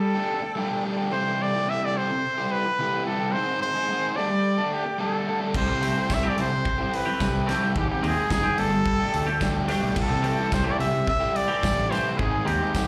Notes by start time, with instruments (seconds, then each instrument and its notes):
Already playing: overdriven electric guitar G3, trumpet A4, string machine A4 D5 G5 D6
0.15 overdriven electric guitar A3 D4 G4
0.42 muted overdriven electric guitar stroke
0.56 overdriven electric guitar G3 A3 D4 G4
0.84 overdriven electric guitar G3 A3 D4 G4
0.97 overdriven electric guitar A3 D4 G4
1.11 overdriven electric guitar C3 E3 G3 E4 G4, trumpet C5, string machine E5
1.42 trumpet D5
1.54 overdriven electric guitar G3 E4 G4
1.67 overdriven electric guitar C3 E3 G3 E4 G4, trumpet E5
1.85 trumpet D5
1.96 overdriven electric guitar E3 G3 E4 G4, trumpet C5
2.11 muted overdriven electric guitar stroke
2.38 overdriven electric guitar G3 E4 G4
2.52 trumpet B4
2.66 muted overdriven electric guitar stroke
2.79 overdriven electric guitar C3 E3 G3 E4 G4
3.06 overdriven electric guitar E3 G3 E4 G4, trumpet A4
3.20 overdriven electric guitar G3 E4 G4
3.32 overdriven electric guitar G#3 C4 D#4 G#4, string machine G#4 D#5, trumpet C5
3.62 trumpet C5
3.74 overdriven electric guitar C4 D#4 G#4
3.89 overdriven electric guitar G#3 C4 D#4 G#4
4.16 overdriven electric guitar G3 A3 D4 A4, string machine A4 D5 D6, trumpet D5
4.30 muted overdriven electric guitar stroke
4.58 overdriven electric guitar A3 D4 A4
4.74 trumpet G4
4.86 muted overdriven electric guitar stroke
4.99 overdriven electric guitar G3 A3 D4 A4, trumpet A4
5.26 overdriven electric guitar G3 A3 D4 A4
5.41 overdriven electric guitar A3 D4 A4
5.53 fingered electric bass C2, overdriven electric guitar C3 G3 C4 E4 G4, string machine E5 G5 A5, kick, crash
5.57 trumpet C5
5.68 fingered electric bass C3, muted clean electric guitar stroke
5.81 clean electric guitar E3 A3 C4 G4, open hi-hat
5.97 overdriven electric guitar C4 E4 G4
6.09 fingered electric bass C2, overdriven electric guitar C3 G3 C4, muted clean electric guitar stroke, kick, snare, tambourine
6.13 overdriven electric guitar E4 G4, trumpet E5
6.23 clean electric guitar E3 A3 C4 G4
6.28 trumpet D5
6.38 fingered electric bass C3, overdriven electric guitar G3 C4 E4 G4, trumpet C5, open hi-hat
6.51 muted overdriven electric guitar stroke
6.65 muted clean electric guitar stroke, kick
6.78 overdriven electric guitar C4 E4 G4
6.94 trumpet B4, open hi-hat
7.05 clean electric guitar E3 A3 C4 G4, muted overdriven electric guitar stroke
7.20 fingered electric bass C2, overdriven electric guitar C3 G3 C4 E4 G4, kick, snare, tambourine
7.33 muted clean electric guitar stroke
7.46 clean electric guitar E3 A3 C4 G4, overdriven electric guitar G3 C4 E4, snare, open hi-hat
7.50 overdriven electric guitar G4
7.63 overdriven electric guitar C4 E4 G4
7.74 fingered electric bass G#1, overdriven electric guitar G#2 D#3 G#3 C4 D#4 G#4, trumpet G4, string machine G#4 D#5 C6, kick
7.88 trumpet G4, muted clean electric guitar stroke
8.03 fingered electric bass D#2, clean electric guitar D#3 G#3 C4 G4, open hi-hat
8.07 trumpet G#4
8.16 overdriven electric guitar G#3 C4 D#4 G#4
8.30 fingered electric bass F#1, overdriven electric guitar G#2 D#3 G#3 C4 D#4 G#4, trumpet G#4, muted clean electric guitar stroke, kick, snare, tambourine
8.43 clean electric guitar D#3 G#3 C4 G4
8.58 fingered electric bass G1, overdriven electric guitar G3 A3 D4 G4, string machine A4 D5 D6, trumpet A4, open hi-hat
8.72 muted overdriven electric guitar stroke
8.86 muted clean electric guitar stroke, kick
9.00 overdriven electric guitar A3 D4 G4
9.14 fingered electric bass D2, open hi-hat
9.27 clean electric guitar A3 D4 G4, muted overdriven electric guitar stroke
9.41 overdriven electric guitar G3 A3 D4 G4, kick, snare, tambourine
9.54 muted clean electric guitar stroke
9.68 overdriven electric guitar G3 A3 D4 G4, clean electric guitar A3 D4 G4, snare, open hi-hat
9.82 fingered electric bass B1, overdriven electric guitar A3 D4 G4
9.95 fingered electric bass C2, overdriven electric guitar C3 E3 G3 E4 G4, string machine E5 C6, kick, crash
10.02 trumpet A4
10.08 fingered electric bass C3, muted clean electric guitar stroke
10.23 clean electric guitar E3 A3 C4 G4, open hi-hat
10.38 overdriven electric guitar G3 E4 G4
10.50 fingered electric bass C2, overdriven electric guitar C3 E3 G3 E4 G4, trumpet C5, muted clean electric guitar stroke, kick, snare, tambourine
10.64 clean electric guitar E3 A3 C4 G4, trumpet D5
10.79 fingered electric bass C3, overdriven electric guitar E3 G3 E4 G4, trumpet E5, open hi-hat
10.94 muted overdriven electric guitar stroke
11.07 trumpet E5, muted clean electric guitar stroke, kick
11.20 overdriven electric guitar G3 E4 G4
11.36 trumpet D5, open hi-hat
11.48 clean electric guitar E3 A3 C4 G4, muted overdriven electric guitar stroke
11.62 fingered electric bass A1, overdriven electric guitar C3 E3 G3 E4 G4, kick, snare, tambourine
11.76 muted clean electric guitar stroke
11.90 clean electric guitar E3 A3 C4 G4, overdriven electric guitar E3 G3 E4, trumpet C5, snare, open hi-hat
11.95 overdriven electric guitar G4
12.05 overdriven electric guitar G3 E4 G4
12.18 fingered electric bass G#1, overdriven electric guitar G#2 D#3 G#3 C4 D#4 G#4, string machine G#3 D#5, trumpet G#4, kick
12.33 muted clean electric guitar stroke
12.45 fingered electric bass D#2, clean electric guitar D#3 G#3 C4 G4, trumpet G4, open hi-hat
12.61 overdriven electric guitar G#3 C4 D#4 G#4
12.73 fingered electric bass G#1, overdriven electric guitar G#2 D#3 G#3 C4, muted clean electric guitar stroke, kick, snare, tambourine
12.78 overdriven electric guitar D#4 G#4